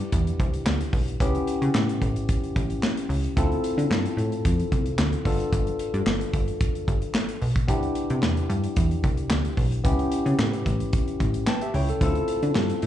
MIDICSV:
0, 0, Header, 1, 4, 480
1, 0, Start_track
1, 0, Tempo, 540541
1, 1067, Time_signature, 4, 2, 24, 8
1, 11424, End_track
2, 0, Start_track
2, 0, Title_t, "Tine electric piano"
2, 0, Program_c, 0, 4
2, 0, Note_on_c, 0, 59, 82
2, 0, Note_on_c, 0, 62, 73
2, 0, Note_on_c, 0, 64, 75
2, 0, Note_on_c, 0, 67, 89
2, 1029, Note_off_c, 0, 59, 0
2, 1033, Note_off_c, 0, 62, 0
2, 1035, Note_off_c, 0, 64, 0
2, 1037, Note_off_c, 0, 67, 0
2, 1066, Note_on_c, 0, 59, 83
2, 1073, Note_on_c, 0, 61, 73
2, 1076, Note_on_c, 0, 64, 67
2, 1080, Note_on_c, 0, 67, 91
2, 2951, Note_off_c, 0, 59, 0
2, 2954, Note_off_c, 0, 61, 0
2, 2956, Note_off_c, 0, 64, 0
2, 2958, Note_off_c, 0, 67, 0
2, 2987, Note_on_c, 0, 60, 85
2, 2994, Note_on_c, 0, 64, 72
2, 2997, Note_on_c, 0, 65, 76
2, 3001, Note_on_c, 0, 69, 96
2, 4634, Note_off_c, 0, 60, 0
2, 4637, Note_off_c, 0, 64, 0
2, 4639, Note_off_c, 0, 65, 0
2, 4640, Note_off_c, 0, 69, 0
2, 4661, Note_on_c, 0, 59, 71
2, 4668, Note_on_c, 0, 62, 69
2, 4672, Note_on_c, 0, 65, 75
2, 4677, Note_on_c, 0, 69, 84
2, 6548, Note_off_c, 0, 59, 0
2, 6552, Note_off_c, 0, 62, 0
2, 6554, Note_off_c, 0, 65, 0
2, 6556, Note_off_c, 0, 69, 0
2, 6815, Note_on_c, 0, 59, 79
2, 6820, Note_on_c, 0, 62, 76
2, 6826, Note_on_c, 0, 64, 74
2, 6829, Note_on_c, 0, 67, 90
2, 8705, Note_off_c, 0, 59, 0
2, 8708, Note_off_c, 0, 62, 0
2, 8711, Note_off_c, 0, 64, 0
2, 8712, Note_off_c, 0, 67, 0
2, 8737, Note_on_c, 0, 59, 80
2, 8744, Note_on_c, 0, 61, 74
2, 8749, Note_on_c, 0, 64, 80
2, 8752, Note_on_c, 0, 67, 96
2, 10157, Note_off_c, 0, 61, 0
2, 10159, Note_off_c, 0, 64, 0
2, 10161, Note_off_c, 0, 67, 0
2, 10193, Note_on_c, 0, 79, 72
2, 10193, Note_on_c, 0, 81, 75
2, 10196, Note_on_c, 0, 71, 56
2, 10311, Note_off_c, 0, 79, 0
2, 10313, Note_off_c, 0, 71, 0
2, 10320, Note_on_c, 0, 76, 66
2, 10326, Note_on_c, 0, 67, 62
2, 10414, Note_off_c, 0, 81, 0
2, 10424, Note_off_c, 0, 76, 0
2, 10428, Note_off_c, 0, 67, 0
2, 10434, Note_on_c, 0, 79, 73
2, 10436, Note_on_c, 0, 73, 76
2, 10440, Note_on_c, 0, 64, 66
2, 10552, Note_off_c, 0, 73, 0
2, 10554, Note_off_c, 0, 64, 0
2, 10562, Note_on_c, 0, 69, 64
2, 10567, Note_on_c, 0, 61, 55
2, 10626, Note_off_c, 0, 59, 0
2, 10654, Note_off_c, 0, 79, 0
2, 10669, Note_on_c, 0, 60, 80
2, 10674, Note_off_c, 0, 69, 0
2, 10675, Note_on_c, 0, 64, 77
2, 10677, Note_on_c, 0, 65, 73
2, 10685, Note_on_c, 0, 69, 89
2, 10789, Note_off_c, 0, 61, 0
2, 11424, Note_off_c, 0, 60, 0
2, 11424, Note_off_c, 0, 64, 0
2, 11424, Note_off_c, 0, 65, 0
2, 11424, Note_off_c, 0, 69, 0
2, 11424, End_track
3, 0, Start_track
3, 0, Title_t, "Analog synth bass"
3, 0, Program_c, 1, 38
3, 113, Note_on_c, 1, 40, 83
3, 274, Note_off_c, 1, 40, 0
3, 352, Note_on_c, 1, 36, 106
3, 514, Note_off_c, 1, 36, 0
3, 591, Note_on_c, 1, 38, 100
3, 753, Note_off_c, 1, 38, 0
3, 825, Note_on_c, 1, 35, 89
3, 989, Note_off_c, 1, 35, 0
3, 1069, Note_on_c, 1, 37, 108
3, 1231, Note_off_c, 1, 37, 0
3, 1437, Note_on_c, 1, 49, 97
3, 1513, Note_off_c, 1, 49, 0
3, 1550, Note_on_c, 1, 45, 99
3, 1712, Note_off_c, 1, 45, 0
3, 1790, Note_on_c, 1, 33, 88
3, 1952, Note_off_c, 1, 33, 0
3, 2273, Note_on_c, 1, 33, 93
3, 2434, Note_off_c, 1, 33, 0
3, 2746, Note_on_c, 1, 37, 94
3, 2909, Note_off_c, 1, 37, 0
3, 2992, Note_on_c, 1, 38, 118
3, 3154, Note_off_c, 1, 38, 0
3, 3353, Note_on_c, 1, 50, 105
3, 3430, Note_off_c, 1, 50, 0
3, 3466, Note_on_c, 1, 43, 96
3, 3630, Note_off_c, 1, 43, 0
3, 3703, Note_on_c, 1, 45, 93
3, 3868, Note_off_c, 1, 45, 0
3, 3953, Note_on_c, 1, 41, 89
3, 4114, Note_off_c, 1, 41, 0
3, 4192, Note_on_c, 1, 36, 91
3, 4354, Note_off_c, 1, 36, 0
3, 4425, Note_on_c, 1, 38, 96
3, 4589, Note_off_c, 1, 38, 0
3, 4666, Note_on_c, 1, 31, 104
3, 4830, Note_off_c, 1, 31, 0
3, 4906, Note_on_c, 1, 31, 120
3, 5069, Note_off_c, 1, 31, 0
3, 5273, Note_on_c, 1, 43, 113
3, 5350, Note_off_c, 1, 43, 0
3, 5385, Note_on_c, 1, 31, 99
3, 5549, Note_off_c, 1, 31, 0
3, 5625, Note_on_c, 1, 31, 88
3, 5789, Note_off_c, 1, 31, 0
3, 6108, Note_on_c, 1, 31, 104
3, 6271, Note_off_c, 1, 31, 0
3, 6585, Note_on_c, 1, 35, 96
3, 6749, Note_off_c, 1, 35, 0
3, 6825, Note_on_c, 1, 36, 105
3, 6989, Note_off_c, 1, 36, 0
3, 7196, Note_on_c, 1, 48, 100
3, 7304, Note_on_c, 1, 40, 107
3, 7317, Note_off_c, 1, 48, 0
3, 7468, Note_off_c, 1, 40, 0
3, 7544, Note_on_c, 1, 43, 99
3, 7708, Note_off_c, 1, 43, 0
3, 7786, Note_on_c, 1, 40, 93
3, 7950, Note_off_c, 1, 40, 0
3, 8025, Note_on_c, 1, 36, 99
3, 8189, Note_off_c, 1, 36, 0
3, 8265, Note_on_c, 1, 38, 102
3, 8429, Note_off_c, 1, 38, 0
3, 8500, Note_on_c, 1, 35, 97
3, 8666, Note_off_c, 1, 35, 0
3, 8743, Note_on_c, 1, 37, 110
3, 8907, Note_off_c, 1, 37, 0
3, 9109, Note_on_c, 1, 49, 105
3, 9187, Note_off_c, 1, 49, 0
3, 9222, Note_on_c, 1, 45, 100
3, 9387, Note_off_c, 1, 45, 0
3, 9466, Note_on_c, 1, 33, 92
3, 9629, Note_off_c, 1, 33, 0
3, 9948, Note_on_c, 1, 33, 93
3, 10111, Note_off_c, 1, 33, 0
3, 10425, Note_on_c, 1, 37, 96
3, 10589, Note_off_c, 1, 37, 0
3, 10664, Note_on_c, 1, 38, 113
3, 10828, Note_off_c, 1, 38, 0
3, 11034, Note_on_c, 1, 50, 100
3, 11111, Note_off_c, 1, 50, 0
3, 11150, Note_on_c, 1, 43, 96
3, 11312, Note_off_c, 1, 43, 0
3, 11392, Note_on_c, 1, 45, 98
3, 11424, Note_off_c, 1, 45, 0
3, 11424, End_track
4, 0, Start_track
4, 0, Title_t, "Drums"
4, 0, Note_on_c, 9, 42, 60
4, 86, Note_off_c, 9, 42, 0
4, 110, Note_on_c, 9, 42, 99
4, 111, Note_on_c, 9, 36, 121
4, 199, Note_off_c, 9, 42, 0
4, 200, Note_off_c, 9, 36, 0
4, 241, Note_on_c, 9, 42, 51
4, 330, Note_off_c, 9, 42, 0
4, 352, Note_on_c, 9, 36, 95
4, 354, Note_on_c, 9, 42, 70
4, 441, Note_off_c, 9, 36, 0
4, 443, Note_off_c, 9, 42, 0
4, 475, Note_on_c, 9, 42, 59
4, 564, Note_off_c, 9, 42, 0
4, 590, Note_on_c, 9, 38, 123
4, 591, Note_on_c, 9, 39, 100
4, 679, Note_off_c, 9, 38, 0
4, 680, Note_off_c, 9, 39, 0
4, 715, Note_on_c, 9, 42, 68
4, 804, Note_off_c, 9, 42, 0
4, 826, Note_on_c, 9, 36, 102
4, 826, Note_on_c, 9, 46, 86
4, 915, Note_off_c, 9, 36, 0
4, 915, Note_off_c, 9, 46, 0
4, 957, Note_on_c, 9, 42, 53
4, 1046, Note_off_c, 9, 42, 0
4, 1068, Note_on_c, 9, 36, 110
4, 1068, Note_on_c, 9, 42, 105
4, 1157, Note_off_c, 9, 36, 0
4, 1157, Note_off_c, 9, 42, 0
4, 1197, Note_on_c, 9, 42, 48
4, 1285, Note_off_c, 9, 42, 0
4, 1309, Note_on_c, 9, 42, 90
4, 1398, Note_off_c, 9, 42, 0
4, 1438, Note_on_c, 9, 42, 56
4, 1527, Note_off_c, 9, 42, 0
4, 1551, Note_on_c, 9, 38, 127
4, 1552, Note_on_c, 9, 39, 93
4, 1640, Note_off_c, 9, 38, 0
4, 1641, Note_off_c, 9, 39, 0
4, 1680, Note_on_c, 9, 42, 59
4, 1769, Note_off_c, 9, 42, 0
4, 1790, Note_on_c, 9, 36, 98
4, 1793, Note_on_c, 9, 42, 80
4, 1879, Note_off_c, 9, 36, 0
4, 1882, Note_off_c, 9, 42, 0
4, 1918, Note_on_c, 9, 42, 56
4, 2007, Note_off_c, 9, 42, 0
4, 2031, Note_on_c, 9, 42, 103
4, 2033, Note_on_c, 9, 36, 125
4, 2120, Note_off_c, 9, 42, 0
4, 2122, Note_off_c, 9, 36, 0
4, 2163, Note_on_c, 9, 42, 49
4, 2252, Note_off_c, 9, 42, 0
4, 2274, Note_on_c, 9, 36, 103
4, 2276, Note_on_c, 9, 42, 76
4, 2363, Note_off_c, 9, 36, 0
4, 2365, Note_off_c, 9, 42, 0
4, 2397, Note_on_c, 9, 42, 55
4, 2485, Note_off_c, 9, 42, 0
4, 2515, Note_on_c, 9, 38, 119
4, 2516, Note_on_c, 9, 39, 91
4, 2603, Note_off_c, 9, 38, 0
4, 2605, Note_off_c, 9, 39, 0
4, 2640, Note_on_c, 9, 42, 63
4, 2729, Note_off_c, 9, 42, 0
4, 2752, Note_on_c, 9, 46, 83
4, 2841, Note_off_c, 9, 46, 0
4, 2880, Note_on_c, 9, 42, 56
4, 2969, Note_off_c, 9, 42, 0
4, 2992, Note_on_c, 9, 36, 114
4, 2994, Note_on_c, 9, 42, 106
4, 3081, Note_off_c, 9, 36, 0
4, 3083, Note_off_c, 9, 42, 0
4, 3123, Note_on_c, 9, 42, 46
4, 3212, Note_off_c, 9, 42, 0
4, 3231, Note_on_c, 9, 42, 89
4, 3320, Note_off_c, 9, 42, 0
4, 3364, Note_on_c, 9, 42, 60
4, 3452, Note_off_c, 9, 42, 0
4, 3475, Note_on_c, 9, 38, 116
4, 3477, Note_on_c, 9, 39, 92
4, 3564, Note_off_c, 9, 38, 0
4, 3565, Note_off_c, 9, 39, 0
4, 3601, Note_on_c, 9, 42, 57
4, 3690, Note_off_c, 9, 42, 0
4, 3715, Note_on_c, 9, 42, 75
4, 3804, Note_off_c, 9, 42, 0
4, 3837, Note_on_c, 9, 42, 58
4, 3926, Note_off_c, 9, 42, 0
4, 3951, Note_on_c, 9, 42, 101
4, 3952, Note_on_c, 9, 36, 115
4, 4040, Note_off_c, 9, 42, 0
4, 4041, Note_off_c, 9, 36, 0
4, 4080, Note_on_c, 9, 42, 48
4, 4169, Note_off_c, 9, 42, 0
4, 4191, Note_on_c, 9, 36, 98
4, 4191, Note_on_c, 9, 42, 77
4, 4280, Note_off_c, 9, 36, 0
4, 4280, Note_off_c, 9, 42, 0
4, 4313, Note_on_c, 9, 42, 55
4, 4402, Note_off_c, 9, 42, 0
4, 4428, Note_on_c, 9, 38, 123
4, 4429, Note_on_c, 9, 39, 101
4, 4517, Note_off_c, 9, 38, 0
4, 4518, Note_off_c, 9, 39, 0
4, 4553, Note_on_c, 9, 42, 66
4, 4642, Note_off_c, 9, 42, 0
4, 4665, Note_on_c, 9, 36, 96
4, 4666, Note_on_c, 9, 46, 85
4, 4754, Note_off_c, 9, 36, 0
4, 4755, Note_off_c, 9, 46, 0
4, 4795, Note_on_c, 9, 42, 58
4, 4884, Note_off_c, 9, 42, 0
4, 4907, Note_on_c, 9, 36, 114
4, 4907, Note_on_c, 9, 42, 101
4, 4996, Note_off_c, 9, 36, 0
4, 4996, Note_off_c, 9, 42, 0
4, 5034, Note_on_c, 9, 42, 49
4, 5122, Note_off_c, 9, 42, 0
4, 5145, Note_on_c, 9, 42, 95
4, 5233, Note_off_c, 9, 42, 0
4, 5274, Note_on_c, 9, 42, 55
4, 5363, Note_off_c, 9, 42, 0
4, 5387, Note_on_c, 9, 38, 127
4, 5388, Note_on_c, 9, 39, 92
4, 5475, Note_off_c, 9, 38, 0
4, 5476, Note_off_c, 9, 39, 0
4, 5514, Note_on_c, 9, 42, 57
4, 5603, Note_off_c, 9, 42, 0
4, 5625, Note_on_c, 9, 36, 97
4, 5627, Note_on_c, 9, 42, 79
4, 5714, Note_off_c, 9, 36, 0
4, 5716, Note_off_c, 9, 42, 0
4, 5752, Note_on_c, 9, 42, 53
4, 5841, Note_off_c, 9, 42, 0
4, 5866, Note_on_c, 9, 42, 107
4, 5867, Note_on_c, 9, 36, 125
4, 5955, Note_off_c, 9, 42, 0
4, 5956, Note_off_c, 9, 36, 0
4, 5996, Note_on_c, 9, 42, 52
4, 6085, Note_off_c, 9, 42, 0
4, 6108, Note_on_c, 9, 36, 99
4, 6111, Note_on_c, 9, 42, 71
4, 6197, Note_off_c, 9, 36, 0
4, 6200, Note_off_c, 9, 42, 0
4, 6231, Note_on_c, 9, 42, 54
4, 6320, Note_off_c, 9, 42, 0
4, 6345, Note_on_c, 9, 38, 117
4, 6346, Note_on_c, 9, 39, 105
4, 6434, Note_off_c, 9, 38, 0
4, 6435, Note_off_c, 9, 39, 0
4, 6470, Note_on_c, 9, 42, 64
4, 6559, Note_off_c, 9, 42, 0
4, 6586, Note_on_c, 9, 46, 84
4, 6675, Note_off_c, 9, 46, 0
4, 6711, Note_on_c, 9, 36, 107
4, 6712, Note_on_c, 9, 42, 58
4, 6800, Note_off_c, 9, 36, 0
4, 6801, Note_off_c, 9, 42, 0
4, 6824, Note_on_c, 9, 36, 103
4, 6825, Note_on_c, 9, 42, 102
4, 6912, Note_off_c, 9, 36, 0
4, 6914, Note_off_c, 9, 42, 0
4, 6950, Note_on_c, 9, 42, 49
4, 7039, Note_off_c, 9, 42, 0
4, 7063, Note_on_c, 9, 42, 85
4, 7152, Note_off_c, 9, 42, 0
4, 7192, Note_on_c, 9, 42, 61
4, 7281, Note_off_c, 9, 42, 0
4, 7306, Note_on_c, 9, 38, 117
4, 7307, Note_on_c, 9, 39, 91
4, 7395, Note_off_c, 9, 38, 0
4, 7396, Note_off_c, 9, 39, 0
4, 7433, Note_on_c, 9, 42, 58
4, 7522, Note_off_c, 9, 42, 0
4, 7546, Note_on_c, 9, 42, 83
4, 7635, Note_off_c, 9, 42, 0
4, 7668, Note_on_c, 9, 42, 58
4, 7757, Note_off_c, 9, 42, 0
4, 7782, Note_on_c, 9, 42, 100
4, 7786, Note_on_c, 9, 36, 121
4, 7871, Note_off_c, 9, 42, 0
4, 7874, Note_off_c, 9, 36, 0
4, 7913, Note_on_c, 9, 42, 55
4, 8002, Note_off_c, 9, 42, 0
4, 8024, Note_on_c, 9, 42, 75
4, 8026, Note_on_c, 9, 36, 99
4, 8113, Note_off_c, 9, 42, 0
4, 8115, Note_off_c, 9, 36, 0
4, 8146, Note_on_c, 9, 42, 54
4, 8235, Note_off_c, 9, 42, 0
4, 8262, Note_on_c, 9, 38, 127
4, 8263, Note_on_c, 9, 39, 106
4, 8350, Note_off_c, 9, 38, 0
4, 8351, Note_off_c, 9, 39, 0
4, 8389, Note_on_c, 9, 42, 61
4, 8478, Note_off_c, 9, 42, 0
4, 8501, Note_on_c, 9, 36, 97
4, 8501, Note_on_c, 9, 46, 82
4, 8590, Note_off_c, 9, 36, 0
4, 8590, Note_off_c, 9, 46, 0
4, 8631, Note_on_c, 9, 42, 58
4, 8719, Note_off_c, 9, 42, 0
4, 8743, Note_on_c, 9, 42, 108
4, 8744, Note_on_c, 9, 36, 108
4, 8832, Note_off_c, 9, 42, 0
4, 8833, Note_off_c, 9, 36, 0
4, 8872, Note_on_c, 9, 42, 50
4, 8961, Note_off_c, 9, 42, 0
4, 8983, Note_on_c, 9, 42, 89
4, 9072, Note_off_c, 9, 42, 0
4, 9111, Note_on_c, 9, 42, 59
4, 9200, Note_off_c, 9, 42, 0
4, 9229, Note_on_c, 9, 38, 118
4, 9230, Note_on_c, 9, 39, 96
4, 9317, Note_off_c, 9, 38, 0
4, 9318, Note_off_c, 9, 39, 0
4, 9354, Note_on_c, 9, 42, 56
4, 9442, Note_off_c, 9, 42, 0
4, 9465, Note_on_c, 9, 36, 93
4, 9468, Note_on_c, 9, 42, 74
4, 9554, Note_off_c, 9, 36, 0
4, 9557, Note_off_c, 9, 42, 0
4, 9592, Note_on_c, 9, 42, 55
4, 9681, Note_off_c, 9, 42, 0
4, 9704, Note_on_c, 9, 42, 99
4, 9708, Note_on_c, 9, 36, 123
4, 9793, Note_off_c, 9, 42, 0
4, 9797, Note_off_c, 9, 36, 0
4, 9836, Note_on_c, 9, 42, 51
4, 9925, Note_off_c, 9, 42, 0
4, 9948, Note_on_c, 9, 36, 98
4, 9948, Note_on_c, 9, 42, 77
4, 10037, Note_off_c, 9, 36, 0
4, 10037, Note_off_c, 9, 42, 0
4, 10070, Note_on_c, 9, 42, 59
4, 10158, Note_off_c, 9, 42, 0
4, 10187, Note_on_c, 9, 38, 127
4, 10188, Note_on_c, 9, 39, 96
4, 10276, Note_off_c, 9, 38, 0
4, 10277, Note_off_c, 9, 39, 0
4, 10314, Note_on_c, 9, 42, 66
4, 10403, Note_off_c, 9, 42, 0
4, 10427, Note_on_c, 9, 46, 90
4, 10516, Note_off_c, 9, 46, 0
4, 10554, Note_on_c, 9, 42, 52
4, 10642, Note_off_c, 9, 42, 0
4, 10665, Note_on_c, 9, 36, 113
4, 10665, Note_on_c, 9, 42, 107
4, 10754, Note_off_c, 9, 36, 0
4, 10754, Note_off_c, 9, 42, 0
4, 10791, Note_on_c, 9, 42, 45
4, 10880, Note_off_c, 9, 42, 0
4, 10903, Note_on_c, 9, 42, 91
4, 10992, Note_off_c, 9, 42, 0
4, 11033, Note_on_c, 9, 42, 59
4, 11122, Note_off_c, 9, 42, 0
4, 11147, Note_on_c, 9, 38, 118
4, 11148, Note_on_c, 9, 39, 88
4, 11236, Note_off_c, 9, 38, 0
4, 11237, Note_off_c, 9, 39, 0
4, 11274, Note_on_c, 9, 42, 62
4, 11363, Note_off_c, 9, 42, 0
4, 11387, Note_on_c, 9, 42, 83
4, 11424, Note_off_c, 9, 42, 0
4, 11424, End_track
0, 0, End_of_file